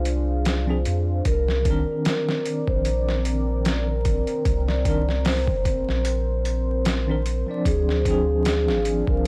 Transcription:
Already playing: C2 D4 F4 G#4 C5 F5
0.05 closed hi-hat
0.45 snare, closed hi-hat
0.66 F3 C4 D4
0.70 G#4
0.85 F2, closed hi-hat
1.25 C2 C4 A#4 D5, kick, closed hi-hat
1.48 snare
1.62 D#3 C4, kick, closed hi-hat
1.68 D4 A#4
2.05 A#4, snare, closed hi-hat
2.29 snare
2.45 closed hi-hat
2.67 A#1 C5, kick
2.85 closed hi-hat
3.09 snare
3.25 closed hi-hat
3.65 snare, closed hi-hat
3.88 A#4
4.05 kick, closed hi-hat
4.27 closed hi-hat
4.45 C2 C5, kick, closed hi-hat
4.68 D5, snare
4.84 D#3 C4 D4, kick, closed hi-hat
4.88 A#4
5.09 snare
5.25 C5, snare, open hi-hat
5.47 G1, kick
5.65 kick, closed hi-hat
5.89 A#1, snare
6.05 closed hi-hat
6.45 closed hi-hat
6.85 snare, closed hi-hat
7.07 D#3 C4 D4
7.11 A#4
7.26 closed hi-hat
7.47 F3 C4 D4
7.51 D5
7.65 D2 D4 G#4 F5, kick, closed hi-hat
7.89 snare
8.02 F3 C4, kick, closed hi-hat
8.08 D4 G#4
8.45 G#4, snare, closed hi-hat
8.68 G#1, snare
8.85 closed hi-hat
9.07 C2 A#4, kick

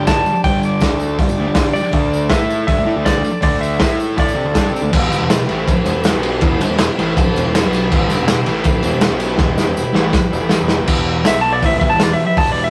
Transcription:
Already playing: G1 D4 G4 D5
0.00 G2 D3 G3
0.07 A5, kick, snare, open hi-hat, tambourine
0.26 muted distorted electric guitar stroke, tambourine
0.35 tambourine
0.44 G1 G2 D3 G3 G5, kick, open hi-hat
0.63 D5, tambourine
0.78 D2 D3 A3 D4 A4 D5, kick, snare, tambourine
0.82 D4, open hi-hat
1.00 tambourine
1.15 C2 D4 G4, kick
1.19 C3 G3 D5, open hi-hat, tambourine
1.28 G1 G2 D3, tambourine
1.38 D2 D3 A3
1.46 G1 G2 D3 G3
1.55 kick, snare, open hi-hat, tambourine
1.73 D5, muted distorted electric guitar stroke, muted picked electric bass stroke, tambourine
1.85 tambourine
1.91 D2 D3 A3 D4 A4, kick, open hi-hat
1.96 D5
2.13 tambourine
2.30 A2 A3 E4 A4 E5, kick, snare, open hi-hat, tambourine
2.34 E5
2.50 tambourine
2.67 G2 G3 D4 A4 E5, kick, open hi-hat, tambourine
2.74 D3 D5
2.78 D2 A3
2.85 A2 A3 E4
2.96 D2 D3 A3 D4
3.05 D5, kick, snare, open hi-hat, tambourine
3.24 muted distorted electric guitar stroke, muted picked electric bass stroke, tambourine
3.41 D2 D3 A3 D4 D5, kick, open hi-hat
3.54 tambourine
3.61 E5, tambourine
3.73 tambourine
3.79 A2 A3 E4 A4, kick, snare, open hi-hat, tambourine
3.83 E4 A4 E5
4.00 tambourine
4.17 A2 A3 D4 E4 A4 D5, kick, open hi-hat, tambourine
4.21 D5
4.29 tambourine
4.35 C3 C4 G4
4.44 D2 D3 A3
4.53 G2 G3 D4 G4, kick, snare, open hi-hat, tambourine
4.67 C3, tambourine
4.72 C4 G4
4.76 tambourine
4.82 D2 D3 A3
4.90 E1 E2 B2 E3 E4, kick, crash
4.95 G4 B4
5.11 G1 G2 D3, ride, tambourine
5.19 E1 E2 B2
5.29 E1 E2 B2, snare, ride, tambourine
5.38 muted distorted electric guitar stroke, muted picked electric bass stroke
5.47 A1 A2 E3 A3, ride
5.67 muted distorted electric guitar stroke, muted picked electric bass stroke, kick, ride, tambourine
5.85 E1 E2 B2, ride, tambourine
5.94 E1 E2 B2
6.04 snare, ride, tambourine
6.10 B1 B2 F#3 B3
6.23 ride
6.40 E1 E2 B2 E3, kick, ride
6.58 G1 G2 D3, ride, tambourine
6.69 E1 E2 B2
6.77 E1 E2 B2, snare, ride, tambourine
6.87 muted distorted electric guitar stroke
6.98 A1 A2 E3 A3, ride
7.17 muted picked electric bass stroke, muted distorted electric guitar stroke, kick, ride, tambourine
7.34 E1 E2 B2, ride, tambourine
7.46 E1 E2 B2
7.55 snare, ride, tambourine
7.63 B1 B2 F#3 B3
7.73 ride, tambourine
7.87 E2 E4 G4
7.92 B2 E3 B4, kick, crash
8.08 G2 D3, ride, tambourine
8.12 G1
8.19 E1 E2 B2
8.28 E1 E2 B2, snare, ride, tambourine
8.38 muted distorted electric guitar stroke, muted picked electric bass stroke
8.46 A1 A2 E3 A3, ride
8.63 muted distorted electric guitar stroke, muted picked electric bass stroke, kick, ride, tambourine
8.82 E1 E2 B2, ride, tambourine
8.93 E1 E2 B2
9.01 snare, ride, tambourine
9.08 B2 F#3 B3
9.13 B1
9.20 ride, tambourine
9.36 E1 E2 B2 E3, kick, snare, tambourine
9.57 G1 G2 D3, snare, tambourine
9.66 E1 E2 B2
9.76 E1 E2 B2, tambourine
9.85 muted distorted electric guitar stroke, muted picked electric bass stroke
9.93 A1 A2 E3 A3, snare, tambourine
10.13 muted distorted electric guitar stroke, kick, snare, tambourine
10.32 E1 E2 B2, tambourine
10.40 A1 A2 E3 A3
10.49 snare, tambourine
10.59 E1 E2 B2 E3
10.68 snare, tambourine
10.80 A#1 A#2 F3 E4
10.85 E1 E2 G4 B4, kick, crash
10.89 B2 E3
11.25 B1 B2 F#3 B3 F#4 B4 E5, snare, open hi-hat, tambourine
11.41 A5
11.53 D5
11.60 A1 A2 E4 G4 B4, kick, open hi-hat
11.64 E3 E5
11.73 E1 E2 B2
11.80 B1 B2 F#3 E5, kick
11.90 E1 E2 A5
11.94 B2 E3
12.00 D5, snare, open hi-hat, tambourine
12.13 E5
12.18 muted picked electric bass stroke, muted distorted electric guitar stroke
12.27 E5
12.37 E1 E2 B2 E3 A5, kick, open hi-hat
12.52 D5
12.64 E5

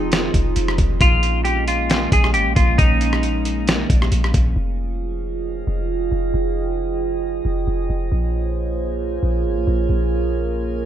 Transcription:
Already playing: F1 F3 G#3 C4 D#4 F4 G#4 D#5
0.12 snare, closed hi-hat
0.34 F1, kick, closed hi-hat
0.56 F1, closed hi-hat
0.68 cross-stick
0.78 F1, kick, closed hi-hat
1.01 A#1 G#3 A#3 C#4 F4 G#4 C#5, kick, closed hi-hat
1.23 closed hi-hat
1.45 G4, closed hi-hat
1.68 F4, closed hi-hat
1.90 snare, closed hi-hat
2.12 A#1 G#4, kick, closed hi-hat
2.24 cross-stick
2.34 G#1 G4, closed hi-hat
2.45 A#1
2.56 A#1 F4, kick, closed hi-hat
2.78 A#1 D#4, kick, closed hi-hat
3.01 closed hi-hat
3.13 cross-stick
3.23 closed hi-hat
3.45 closed hi-hat
3.67 snare, closed hi-hat
3.90 A#1, kick, closed hi-hat
4.02 cross-stick
4.12 A#1, closed hi-hat
4.24 cross-stick
4.34 A#1, kick, closed hi-hat
4.56 F1 F3 D#4 F4 G#4 D#5 F5 G5
5.67 F1
6.12 F1
6.33 F1 D#5
7.45 F1
7.67 F1
7.90 F1
8.12 A#1 A#3 C#4 F4 G#4 A#4 C5 C#5 G#5
9.23 A#1
9.45 G#1
9.56 A#1
9.67 A#1
9.89 A#1 A#4

